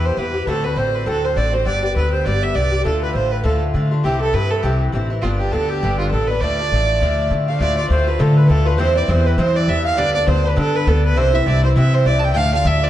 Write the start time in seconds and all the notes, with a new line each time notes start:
Already playing: E2 G2 E3 B3 G4
0.05 C5
0.17 E2 G2 E3 B3 G4 B4
0.34 E3 B3 G4
0.47 D2 A2 D3 C4 F#4 A4
0.64 D3 C4 F#4 B4
0.76 A1 A2 D3 C4 F#4 C5
0.95 B4
1.06 D2 A2 D3 C4 F#4 A4
1.24 C5
1.36 A1 A2 D3 C4 F#4 D5
1.53 D3 C4 F#4 C5
1.65 G1 G2 D3 B3 G4 D5
1.83 D3 B3 G4 D5
1.95 D2 G2 D3 B3 G4 B4
2.12 C5
2.25 G1 G2 D3 B3 G4 D5
2.42 E5
2.54 C2 G2 D3 B3 G4 D5
2.72 D3 B3 G4
2.84 D2 A2 D3 A3 F4 A4
3.02 B4
3.14 A1 A2 D3 A3 F4 C5
3.32 B4
3.44 D2 A2 D3 A3 F4 A4
3.74 A2 D3 A3 F4
3.91 D3 A3 F4
4.03 C2 G2 E3 C4 E4 G4
4.21 E3 C4 E4 A4
4.33 G2 E3 C4 E4 B4
4.51 A4
4.63 C2 G2 E3 C4 E4 G4
4.93 A1 G2 E3 C4 E4
5.10 E3 C4 E4
5.22 G1 G2 D3 B3 D4 F4
5.39 D3 B3 D4 G4
5.52 D2 G2 D3 B3 D4 A4
5.69 G4
5.83 G1 G2 D3 B3 D4
5.99 F4
6.11 A1 G2 D3 B3 A4
6.15 D4
6.28 B3 D4 B4
6.33 D3
6.40 D2 A2 F3 A3 D4 D5
6.59 F3 A3 D4
6.72 A1 A2 F3 A3 D4
7.01 D2 A2 F3 A3 D4
7.31 A2 D3 F3 A3 D4
7.48 F3 A3 D4 F5
7.60 D2 A2 D3 A3 F4 D5
7.77 D3 A3 F4 D5
7.90 D2 A2 D3 A3 F4 C5
8.07 D3 A3 F4 B4
8.19 A2 D3 A3 F4 A4
8.36 B4
8.49 D2 A2 D3 A3 F4 A4
8.65 D3 A3 F4 B4
8.77 E2 G2 E3 C4 E4 C5
8.94 E3 C4 E4 D5
9.08 E2 G2 E3 C4 E4 C5
9.25 E3 C4 E4 B4
9.37 G2 E3 C4 E4 C5
9.55 D5
9.68 E2 G2 E3 C4 E4 E5
9.84 F5
9.96 D2 G2 D3 B3 D4 D5
10.14 D3 B3 D4 D5
10.27 D2 G2 D3 B3 D4 C5
10.43 D3 B3 D4 B4
10.56 G2 D3 B3 D4 A4
10.75 B4
10.86 D2 G2 D3 B3 D4 A4
11.05 B4
11.16 C2 G2 E3 C4 E4 C5
11.33 E3 C4 E4 E5
11.43 C2 G2 E3 D5 E5
11.48 C4 E4 D5
11.63 E3 C4 E4 C5
11.75 G2 C3 E3 C4 E4 E5
11.94 C5
11.99 E5
12.05 C2 G2 E3 C4 E4 D5
12.19 E4 A5
12.24 E3 C4 G5
12.32 D2 A2 F3 A3 D4 F5 G5
12.37 F5
12.52 F3 A3 D4 F5
12.64 D2 A2 F3 A3 D4 E5
12.80 F3 A3 D4 D5